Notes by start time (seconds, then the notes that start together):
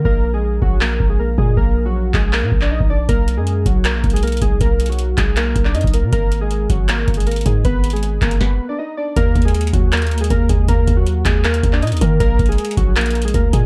0.05 A#1 A#3 A#4, kick
0.34 G#3 G#4
0.62 A#1 F#3 F#4, kick
0.81 A#3 A#4, clap
1.00 A#1, kick
1.10 G#3 G#4
1.19 A#3 A#4
1.38 A#2 G#3 G#4, kick
1.57 A#1 A#3 A#4, kick
1.86 F#3 F#4
2.14 A#1 G#3 G#4, kick, clap
2.33 A#3 A#4, clap
2.42 A#2
2.52 A#1, kick
2.61 D4 D5, clap
2.71 D#4 D#5
2.80 A#1, kick
2.90 D4 D5
3.09 B1 A#3 A#4, kick, closed hi-hat
3.28 closed hi-hat
3.37 F#2 G#3 G#4
3.47 closed hi-hat
3.66 B1 F#3 F#4, kick, closed hi-hat
3.85 A#3 A#4, clap, closed hi-hat
3.94 A#1
4.04 B1, kick, closed hi-hat
4.10 G#4, closed hi-hat
4.14 G#3, closed hi-hat
4.23 A#3 A#4, closed hi-hat
4.27 closed hi-hat
4.32 closed hi-hat
4.37 closed hi-hat
4.42 B1 G#3 G#4, kick, closed hi-hat
4.61 B1 A#3 A#4, kick, closed hi-hat
4.80 closed hi-hat
4.86 F#4, closed hi-hat
4.90 F#3, closed hi-hat
4.99 closed hi-hat
5.18 B1 G#3 G#4, kick, clap, closed hi-hat
5.37 A#3 A#4, clap, closed hi-hat
5.56 B1, kick, closed hi-hat
5.65 D4 D5, clap
5.75 F#2 D#4 D#5, closed hi-hat
5.81 B1, kick, closed hi-hat
5.87 closed hi-hat
5.94 A#3 A#4, closed hi-hat
6.03 B2
6.12 G#1 A#3 A#4, kick, closed hi-hat
6.32 closed hi-hat
6.41 G#3 G#4
6.51 closed hi-hat
6.70 G#1 F#3 F#4, kick, closed hi-hat
6.89 A#3 A#4, clap, closed hi-hat
7.08 G#1, kick, closed hi-hat
7.14 G#3 G#4, closed hi-hat
7.20 closed hi-hat
7.27 A#3 A#4, closed hi-hat
7.31 closed hi-hat
7.36 closed hi-hat
7.41 closed hi-hat
7.46 G#2 G#3 G#4, kick, closed hi-hat
7.65 G#1 B3 B4, kick, closed hi-hat
7.84 closed hi-hat
7.90 G#3 G#4, closed hi-hat
7.96 closed hi-hat
8.03 closed hi-hat
8.22 G#1 A#3 A#4, kick, clap, closed hi-hat
8.31 closed hi-hat
8.41 B3 B4, kick, snare
8.69 D4 D5
8.79 D#4 D#5
8.97 D4 D5
9.16 D#2 A#3 A#4, kick, closed hi-hat
9.35 D#2, kick, closed hi-hat
9.42 G#4, closed hi-hat
9.46 G#3, closed hi-hat
9.55 closed hi-hat
9.61 closed hi-hat
9.67 closed hi-hat
9.73 D#2 F#3 F#4, kick, closed hi-hat
9.92 A#3 A#4, clap, closed hi-hat
9.97 closed hi-hat
10.02 closed hi-hat
10.07 closed hi-hat
10.11 D2, closed hi-hat
10.18 D#2 G#3 G#4, closed hi-hat
10.24 closed hi-hat
10.30 D#2 A#3 A#4, kick, closed hi-hat
10.49 D#2 G#3 G#4, kick, closed hi-hat
10.68 D#2 A#3 A#4, kick, closed hi-hat
10.87 D#2, kick, closed hi-hat
10.97 F#3 F#4
11.07 closed hi-hat
11.25 D#2 G#3 G#4, kick, clap, closed hi-hat
11.44 A#3 A#4, clap, closed hi-hat
11.54 closed hi-hat
11.63 D#2, kick, closed hi-hat
11.73 D4 D5, clap
11.82 A#2 D#4 D#5, closed hi-hat
11.87 closed hi-hat
11.92 D#2, closed hi-hat
11.97 closed hi-hat
12.01 D#3 A#3 A#4, kick, closed hi-hat
12.20 A#1 A#3 A#4, kick, closed hi-hat
12.39 A#1, kick, closed hi-hat
12.46 G#3 G#4, closed hi-hat
12.52 closed hi-hat
12.58 closed hi-hat
12.65 closed hi-hat
12.71 closed hi-hat
12.77 A#1 F#3 F#4, kick, closed hi-hat
12.96 A#3 A#4, clap, closed hi-hat
13.01 closed hi-hat
13.06 closed hi-hat
13.11 closed hi-hat
13.15 closed hi-hat
13.22 G#3 G#4, closed hi-hat
13.28 closed hi-hat
13.34 D2 A#3 A#4, kick, closed hi-hat
13.53 A#2 G#3 G#4, kick, closed hi-hat